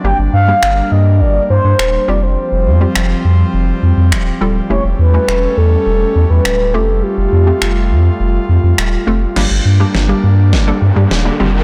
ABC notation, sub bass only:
X:1
M:4/4
L:1/16
Q:1/4=103
K:Gm
V:1 name="Sub bass" clef=bass
G,,, G,,, G,,2 G,,,2 G,,2 G,,,2 G,, G,, E,,,2 F,,,2- | F,,, F,,, F,,2 F,,,2 F,,2 F,,,2 F,, F,, E,,,2 D,,,2 | =E,,, E,,, =E,,2 E,,,2 E,,2 E,,,2 E,, E,, D,,,2 F,,,2- | F,,, F,,, F,,2 F,,,2 F,,2 F,,,2 F,, F,, E,,,2 F,,,2 |
G,,, G,,, G,,2 G,,,2 G,,2 G,,,2 G,, G,, E,,,2 F,,,2 |]